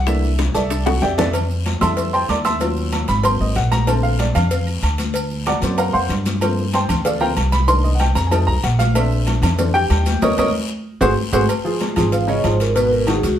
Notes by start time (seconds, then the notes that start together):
Already playing: C2
0.06 E3 A3 A#3 D4 E5, high bongo, high conga, long guiro, maracas
0.23 high bongo, high conga, maracas
0.39 high bongo, high conga, high timbale, short guiro, maracas
0.54 C2 A4 D5 E5 A5, high conga, short guiro, maracas
0.70 high bongo, high conga, high timbale, long guiro, maracas
0.86 F#4 F#5, high bongo, high conga, high timbale, maracas
1.02 F2 G4 D5 E5 G5, low bongo, high timbale, short guiro, maracas
1.18 A4 D5 E5 A5, low bongo, low conga, low timbale, short guiro, maracas
1.33 cowbell, high conga, low agogo, long guiro, maracas
1.50 high conga, maracas
1.66 cowbell, high conga, low agogo, short guiro, maracas
1.80 F2 G3 A3 E4 E5 A5 C6 E6, cowbell, high conga, low conga, low agogo, short guiro, maracas
1.97 cowbell, high conga, long guiro, maracas
2.13 C5 G5 A5 C6, high conga, low agogo, maracas
2.29 D#2 D5 D6, cowbell, high conga, low timbale, low agogo, short guiro, maracas
2.45 E5 A5 C6 E6, cowbell, high conga, short guiro, maracas
2.60 F#3 C#4 F4, cowbell, high conga, low agogo, long guiro, maracas
2.77 high conga, maracas
2.92 cowbell, high conga, low agogo, short guiro, maracas
3.08 G#1 B5, cowbell, high conga, short guiro, maracas
3.23 F#3 A#3 C4 C6, cowbell, high conga, low agogo, long guiro, maracas
3.40 G#1 D#5, high conga, maracas
3.56 A#1 F#5, cowbell, high conga, low agogo, short guiro, maracas
3.72 A#5, cowbell, high conga, short guiro, maracas
3.87 D3 A3 C4 A5, cowbell, high conga, low agogo, long guiro, maracas
4.03 F5, high conga, maracas
4.19 D5, cowbell, high conga, low agogo, short guiro, maracas
4.35 F2 F5, cowbell, high conga, low conga, low agogo, short guiro, maracas
4.51 cowbell, high conga, long guiro, maracas
4.67 high conga, low agogo, maracas
4.82 D2, cowbell, high conga, low agogo, short guiro, maracas
4.98 cowbell, high conga, short guiro, maracas
5.14 cowbell, high conga, low agogo, long guiro, maracas
5.31 high conga, maracas
5.46 D5 F#5 A#5 D6, cowbell, high conga, low agogo, short guiro, maracas
5.61 F#2 F#3 A#3 C4, cowbell, high conga, short guiro, maracas
5.78 A#4 F5 F#5 A#5, cowbell, high conga, low agogo, long guiro, maracas
5.93 F2 C5 F5 F#5 C6, high conga, maracas
6.09 G2, cowbell, high conga, low timbale, low agogo, short guiro, maracas
6.25 cowbell, high conga, short guiro, maracas
6.41 F3 A3 A#3 C4, cowbell, high conga, low agogo, long guiro, maracas
6.58 high conga, maracas
6.73 C5 G5 A5 C6, cowbell, high conga, low agogo, short guiro, maracas
6.89 D2, cowbell, high conga, low conga, low agogo, short guiro, maracas
7.05 A4 D5 F5 A5, cowbell, high conga, long guiro, maracas
7.20 F3 A3 A#3 C4 A#4 F5 G5 A#5, high conga, low agogo, maracas
7.36 C2, cowbell, high conga, low agogo, short guiro, maracas
7.52 B5, cowbell, high conga, short guiro, maracas
7.67 D#3 A#3 D4 C6, cowbell, high conga, low agogo, long guiro, maracas
7.84 D#5, high conga, maracas
7.95 F#5
8.00 G5, cowbell, high conga, low agogo, short guiro, maracas
8.15 F2 A#5, cowbell, high conga, short guiro, maracas
8.27 F#3 G#5
8.31 A3 D#4 A5, cowbell, high conga, low agogo, long guiro, maracas
8.47 C2 A#5, high conga, maracas
8.63 A#1 F#5, cowbell, high conga, low agogo, short guiro, maracas
8.79 F5, cowbell, high conga, short guiro, maracas
8.94 A3 C4 D4 E5, cowbell, high conga, low agogo, long guiro, maracas
9.12 high conga, maracas
9.27 cowbell, high conga, low agogo, short guiro, maracas
9.42 F2, cowbell, high conga, low conga, low agogo, short guiro, maracas
9.58 A3 C4 D4, cowbell, high conga, low conga, long guiro, maracas
9.74 G4 G5, high conga, low agogo, maracas
9.90 D#2, cowbell, high conga, low timbale, low agogo, short guiro, maracas
10.06 cowbell, high conga, short guiro, maracas
10.22 D#2 A#4 C#5 D#5, cowbell, high conga, high timbale, long guiro, maracas
10.37 D#2 A#4 C#5 D#5, cowbell, high conga, high timbale, long guiro, maracas
11.01 G#1 F#4 G#4 C5, cowbell, high conga, high timbale, long guiro, maracas
11.32 G#1 F#4 G#4 C5, cowbell, high conga, high timbale, long guiro, maracas
11.49 cowbell, high conga, low agogo, long guiro, maracas
11.64 F3 F4 G#4, high conga, maracas
11.81 cowbell, high conga, low agogo, short guiro, maracas
11.96 G#1 F3 F4 G#4, cowbell, high conga, low conga, low agogo, short guiro, maracas
12.12 F5, cowbell, high conga, long guiro, maracas
12.27 C#3 C#4 C#5 D#5, high conga, low agogo, maracas
12.43 G#1 F3 F4 G#4 C5, cowbell, high conga, low agogo, short guiro, maracas
12.60 A#4, cowbell, short guiro, maracas
12.75 B2 B3 B4, cowbell, high conga, low agogo, long guiro, maracas
12.92 A#4, high conga, maracas
13.07 D#3 D#4 F#4 G#4, cowbell, high conga, low agogo, short guiro, maracas
13.23 C#2 F#4, cowbell, high conga, short guiro, maracas